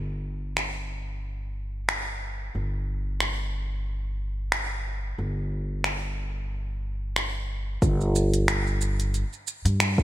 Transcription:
Already playing: G1
0.57 finger snap
1.89 finger snap
2.55 G1
3.20 finger snap
4.52 finger snap
5.18 G1
5.84 finger snap
7.16 finger snap
7.82 G1, kick, closed hi-hat, shaker
8.01 shaker
8.16 shaker
8.34 closed hi-hat, shaker
8.48 finger snap, closed hi-hat, shaker
8.67 shaker
8.81 shaker
9.00 closed hi-hat, shaker
9.14 closed hi-hat, shaker
9.33 shaker
9.47 shaker
9.65 G2, closed hi-hat, shaker
9.80 finger snap, closed hi-hat, shaker
9.98 kick, shaker

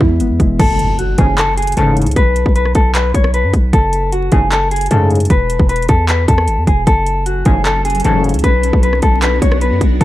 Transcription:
Already playing: E3 G#3 B3 E5
0.00 E2 E4, kick
0.20 G#1 B3, closed hi-hat
0.30 E2
0.40 E1 G#3, kick, closed hi-hat
0.59 F#1 A4, kick, closed hi-hat, crash, impact
0.79 closed hi-hat
0.99 F#4, closed hi-hat
1.18 F#1 A1 G#2 C#3 G#4, kick, closed hi-hat
1.38 A4, clap, closed hi-hat
1.57 G#4, closed hi-hat
1.62 closed hi-hat
1.67 closed hi-hat
1.72 closed hi-hat
1.77 F#1 A1 G#2 C#3 A4, closed hi-hat
1.97 closed hi-hat
2.02 closed hi-hat
2.07 C#2, closed hi-hat
2.11 closed hi-hat
2.16 B1 B4, kick, closed hi-hat
2.36 closed hi-hat
2.46 B1, kick
2.56 B4, closed hi-hat
2.65 cross-stick
2.75 B1 A4, kick, closed hi-hat
2.95 B4, clap, closed hi-hat
3.14 B1 C#5, kick, closed hi-hat
3.24 cross-stick
3.34 B4, closed hi-hat
3.44 F#2
3.54 B1, kick, closed hi-hat
3.73 F#1 A4, kick, closed hi-hat
3.93 closed hi-hat
4.12 F#4, closed hi-hat
4.32 F#1 A1 G#2 C#3 G#4, kick, closed hi-hat
4.52 A4, clap, closed hi-hat
4.71 G#4, closed hi-hat
4.76 closed hi-hat
4.81 closed hi-hat
4.86 closed hi-hat
4.91 A1 F#2 G#2 C#3 A4, closed hi-hat
5.10 closed hi-hat
5.15 closed hi-hat
5.20 closed hi-hat
5.25 closed hi-hat
5.30 E1 B4, kick, closed hi-hat
5.50 closed hi-hat
5.60 E1, kick
5.69 B4, closed hi-hat
5.76 closed hi-hat
5.82 closed hi-hat
5.89 E2 A4, kick, closed hi-hat
6.09 B4, clap, closed hi-hat
6.28 E2 A4, kick, closed hi-hat
6.38 cross-stick
6.48 G#1, closed hi-hat
6.58 E2
6.67 E1 G#4, kick, closed hi-hat
6.87 F#1 F#3 C#4 A4 G#5, kick, closed hi-hat
7.07 closed hi-hat
7.26 F#4, closed hi-hat
7.45 F#1 A1 G#2 C#3 G#4, kick, closed hi-hat
7.65 A4, clap, closed hi-hat
7.85 G#4, closed hi-hat
7.90 closed hi-hat
7.95 closed hi-hat
8.00 closed hi-hat
8.04 F#1 A1 G#2 C#3 A4, closed hi-hat
8.24 closed hi-hat
8.29 closed hi-hat
8.34 C#2, closed hi-hat
8.39 closed hi-hat
8.44 B1 B3 D4 F#4 B4, kick, closed hi-hat
8.63 closed hi-hat
8.73 B1, kick
8.83 B4, closed hi-hat
8.93 cross-stick
9.02 B1 A4, kick, closed hi-hat
9.22 B4, clap, closed hi-hat
9.42 B1 C#5, kick, closed hi-hat
9.52 cross-stick
9.61 B4, closed hi-hat
9.71 F#2
9.81 B1, kick, closed hi-hat
10.01 F#1 A4, kick, closed hi-hat

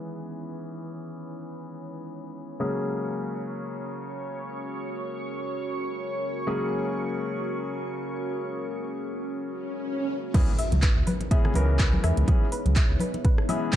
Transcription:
Already playing: E3 G#3 B3 C#4 D#4 E4 G#4 B4 C#5
2.60 C#3 F#3 G#3 A#3 C#4 F#4 G#4 A#4 C#5 C#6
6.47 C#3 F#3 G#3 A#3 C#4 G#4
9.38 swell
10.34 E3 G#3 B3 C#4 D#4 E4 G#4 B4 C#5, kick, closed hi-hat, crash, impact, high conga
10.59 E5, open hi-hat
10.72 C#2, closed hi-hat, high conga
10.82 B4, kick, clap, closed hi-hat
10.96 C#2
11.07 B4, open hi-hat, high conga
11.21 closed hi-hat, muted conga
11.31 E3 G#3 B3 C#4 G#4 E5, kick, closed hi-hat
11.45 cross-stick, low conga
11.54 C#2 E3 G#3 B3 C#4 A#4 B4, open hi-hat, high conga
11.79 B4, kick, clap, closed hi-hat
11.93 high conga
12.04 E2 E5, cross-stick, open hi-hat
12.17 C#2, closed hi-hat
12.28 E3 G#3 B3 C#4 G#4 B4, kick, closed hi-hat, high conga
12.52 B4, open hi-hat
12.66 C#2, closed hi-hat, high conga
12.76 E5, kick, clap, closed hi-hat
12.90 C#2
13.00 B4, open hi-hat, high conga
13.14 closed hi-hat, muted conga
13.24 B4, kick, closed hi-hat, low conga
13.38 cross-stick
13.49 E3 G#3 B3 C#4 G#4 E5, open hi-hat, high conga
13.73 E3 G#3 B3 B4, kick, clap, closed hi-hat

